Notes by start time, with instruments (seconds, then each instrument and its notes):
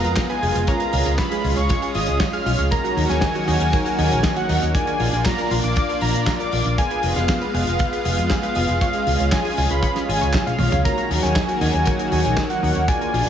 Already playing: analog synth pad G#3 B3 F4, analog polysynth B3 F4 G#4 F5, analog synth lead A#5
0.04 fingered electric bass F2, synth arpeggio sound F4, closed hi-hat
0.16 synth arpeggio sound F5, kick, snare, clap, closed hi-hat
0.30 synth arpeggio sound B4, analog synth lead G#5, closed hi-hat
0.42 fingered electric bass F1, analog polysynth B3 F4 G#4 F5, synth arpeggio sound G#4, open hi-hat
0.55 fingered electric bass F1, synth arpeggio sound F4, closed hi-hat
0.67 analog synth pad G#3 C#4, analog polysynth C#4 F4 G#4 F5, synth arpeggio sound C#5, analog synth lead A#5, kick, closed hi-hat
0.80 synth arpeggio sound G#4, closed hi-hat
0.93 fingered electric bass C#2, synth arpeggio sound F4, open hi-hat
1.06 fingered electric bass C#2, synth arpeggio sound C#4, closed hi-hat
1.18 synth arpeggio sound C#5, analog synth lead B5, kick, snare, clap, closed hi-hat
1.31 synth arpeggio sound G#4, closed hi-hat
1.44 fingered electric bass C#2, synth arpeggio sound F4, open hi-hat
1.57 fingered electric bass C#2, synth arpeggio sound C#4, analog synth lead C#6, closed hi-hat
1.69 synth arpeggio sound C#5, kick, closed hi-hat
1.82 synth arpeggio sound G#4, closed hi-hat
1.94 fingered electric bass G#1, synth arpeggio sound F4, analog synth lead D#6, open hi-hat
2.06 fingered electric bass C#2, synth arpeggio sound C#4, closed hi-hat
2.20 synth arpeggio sound C#5, kick, snare, clap, closed hi-hat
2.33 analog polysynth C#4 F4 G#4 F5, synth arpeggio sound G#4, analog synth lead F6, closed hi-hat
2.46 fingered electric bass B1, synth arpeggio sound F4, open hi-hat
2.59 fingered electric bass C#2, synth arpeggio sound C#4, closed hi-hat
2.71 analog synth pad D#3 F#3 A#3 F#4, analog polysynth A#3 D#4 F#4 C#5, synth arpeggio sound A#4, analog synth lead A#5, kick, closed hi-hat
2.84 synth arpeggio sound F#4, closed hi-hat
2.97 fingered electric bass D#2, synth arpeggio sound D#4, open hi-hat
3.09 fingered electric bass D#2, synth arpeggio sound C#4, analog synth lead G#5, snare, closed hi-hat
3.21 synth arpeggio sound D#4, kick, snare, clap, closed hi-hat
3.35 synth arpeggio sound F#4, closed hi-hat
3.47 fingered electric bass D#2, synth arpeggio sound D#4, analog synth lead G#5, open hi-hat
3.60 fingered electric bass D#2, synth arpeggio sound C#4, closed hi-hat
3.73 synth arpeggio sound A#4, kick, closed hi-hat
3.86 synth arpeggio sound F#4, closed hi-hat
3.98 fingered electric bass D#2, synth arpeggio sound D#4, analog synth lead G#5, open hi-hat
4.11 fingered electric bass A#1, synth arpeggio sound C#4, closed hi-hat
4.23 synth arpeggio sound D#4, kick, snare, clap, closed hi-hat
4.36 synth arpeggio sound F#4, analog synth lead F#5, closed hi-hat
4.49 fingered electric bass D#2, analog polysynth A#3 D#4 F#4 C#5, synth arpeggio sound D#4, open hi-hat
4.62 fingered electric bass D#2, synth arpeggio sound C#4, closed hi-hat
4.74 analog polysynth A#3 D4 F4 D5, analog synth pad A#3 D4 F4, synth arpeggio sound D5, analog synth lead G#5, kick, closed hi-hat
4.87 synth arpeggio sound A#4, closed hi-hat
5.00 fingered electric bass A#1, synth arpeggio sound F4, open hi-hat
5.13 fingered electric bass A#1, synth arpeggio sound D4, closed hi-hat
5.25 synth arpeggio sound F4, analog synth lead A#5, kick, snare, clap, closed hi-hat
5.38 synth arpeggio sound A#4, closed hi-hat
5.51 fingered electric bass A#1, synth arpeggio sound F4, open hi-hat
5.63 fingered electric bass A#1, synth arpeggio sound D4, analog synth lead D6, closed hi-hat
5.76 synth arpeggio sound D5, kick, closed hi-hat
5.89 synth arpeggio sound A#4, closed hi-hat
6.01 fingered electric bass A#1, synth arpeggio sound F4, analog synth lead A#5, open hi-hat
6.14 fingered electric bass A#2, synth arpeggio sound D4, closed hi-hat
6.27 synth arpeggio sound F4, kick, snare, clap, closed hi-hat
6.40 synth arpeggio sound A#4, analog synth lead D6, closed hi-hat
6.52 fingered electric bass A#1, analog polysynth A#3 D4 F4 D5, synth arpeggio sound F4, open hi-hat
6.65 fingered electric bass A#1, synth arpeggio sound D4, closed hi-hat
6.78 analog synth pad G#3 B3 F4, analog polysynth B3 F4 G#4 F5, synth arpeggio sound F5, analog synth lead G#5, kick, closed hi-hat
6.90 synth arpeggio sound B4, closed hi-hat
7.03 fingered electric bass F1, synth arpeggio sound G#4, open hi-hat
7.16 fingered electric bass F1, synth arpeggio sound F4, analog synth lead F5, snare, closed hi-hat
7.28 synth arpeggio sound G#4, kick, snare, clap, closed hi-hat
7.41 synth arpeggio sound B4, closed hi-hat
7.54 fingered electric bass F1, synth arpeggio sound G#4, analog synth lead F5, open hi-hat
7.67 fingered electric bass F1, synth arpeggio sound F4, closed hi-hat
7.79 synth arpeggio sound F5, kick, closed hi-hat
7.92 synth arpeggio sound B4, closed hi-hat
8.05 fingered electric bass F1, synth arpeggio sound G#4, analog synth lead F5, open hi-hat
8.18 fingered electric bass F2, synth arpeggio sound F4, closed hi-hat
8.30 synth arpeggio sound G#4, kick, snare, clap, closed hi-hat
8.43 synth arpeggio sound B4, analog synth lead F5, closed hi-hat
8.55 fingered electric bass F1, analog polysynth B3 F4 G#4 F5, synth arpeggio sound G#4, open hi-hat
8.69 fingered electric bass F1, synth arpeggio sound F4, closed hi-hat
8.81 analog synth pad C#4, analog polysynth C#4 F4 G#4 F5, synth arpeggio sound C#5, analog synth lead F5, kick, closed hi-hat
8.93 synth arpeggio sound G#4, closed hi-hat
9.07 fingered electric bass C#2, synth arpeggio sound F4, open hi-hat
9.20 fingered electric bass C#2, synth arpeggio sound C#4, closed hi-hat
9.32 synth arpeggio sound F4, analog synth lead G#5, kick, snare, clap, closed hi-hat
9.45 synth arpeggio sound G#4, open hi-hat
9.57 fingered electric bass C#2, synth arpeggio sound F4, open hi-hat
9.70 fingered electric bass C#2, synth arpeggio sound C#4, analog synth lead B5, closed hi-hat
9.83 synth arpeggio sound C#5, kick, closed hi-hat
9.96 synth arpeggio sound G#4, snare, closed hi-hat
10.09 fingered electric bass G#1, synth arpeggio sound F4, analog synth lead G#5, open hi-hat
10.21 fingered electric bass C#2, synth arpeggio sound C#5, closed hi-hat
10.33 synth arpeggio sound C#4, kick, snare, clap, closed hi-hat
10.47 analog synth lead F5, synth arpeggio sound F5, closed hi-hat, high tom
10.59 fingered electric bass B1, analog polysynth C#4 F4 G#4 F5, synth arpeggio sound C#5, open hi-hat, mid tom
10.72 fingered electric bass C#2, synth arpeggio sound C#4, closed hi-hat, mid tom
10.85 analog synth pad D#3 F#3 A#3 F#4, analog polysynth A#3 D#4 F#4 C#5, synth arpeggio sound A#4, analog synth lead A#5, kick, closed hi-hat
10.98 synth arpeggio sound F#4, closed hi-hat
11.10 fingered electric bass D#2, synth arpeggio sound D#4, open hi-hat
11.23 fingered electric bass D#2, synth arpeggio sound C#4, analog synth lead G#5, snare, closed hi-hat
11.36 synth arpeggio sound D#4, kick, snare, clap, closed hi-hat
11.48 synth arpeggio sound F#4, closed hi-hat
11.61 fingered electric bass D#2, synth arpeggio sound D#4, analog synth lead G#5, open hi-hat
11.74 fingered electric bass D#2, synth arpeggio sound C#4, closed hi-hat
11.85 synth arpeggio sound A#4, kick, closed hi-hat
11.99 synth arpeggio sound F#4, closed hi-hat
12.12 fingered electric bass D#2, synth arpeggio sound D#4, analog synth lead G#5, open hi-hat
12.25 fingered electric bass A#1, synth arpeggio sound C#4, closed hi-hat
12.37 synth arpeggio sound D#4, kick, snare, clap, closed hi-hat
12.50 synth arpeggio sound F#4, analog synth lead F#5, closed hi-hat
12.63 fingered electric bass D#2, analog polysynth A#3 D#4 F#4 C#5, synth arpeggio sound D#4, open hi-hat
12.75 fingered electric bass D#2, synth arpeggio sound C#4, closed hi-hat
12.88 analog polysynth A#3 D4 F4 D5, analog synth pad D4 F4, synth arpeggio sound D5, analog synth lead G#5, kick, closed hi-hat
13.01 synth arpeggio sound A#4, closed hi-hat
13.13 fingered electric bass A#1, synth arpeggio sound F4, open hi-hat